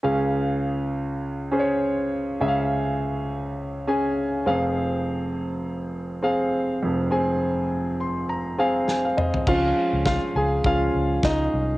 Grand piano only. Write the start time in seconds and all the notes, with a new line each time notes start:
0.03 C#2 C#3 C#4 G#4 F5
1.51 C#4 G#4 C5
1.59 C#5
2.40 C#2 C#3 C#4 G#4 E5
2.48 F5
3.87 C#4 G#4 G#5
4.46 F1 F2 C4 G#4 F5
6.23 C4 G#4 F5
6.83 F1 F2
7.11 C4 G#4 G#5
8.01 C6
8.29 A#5
8.59 C4 G#4 F5 G#5
8.89 G#5
9.05 F5
9.17 D#5
9.47 F3 G#3 C#4 F4 F5
10.06 F4 F5
10.36 G#4 G#5
10.65 F3 G#3 C#4 F4 F5
11.25 D#4 D#5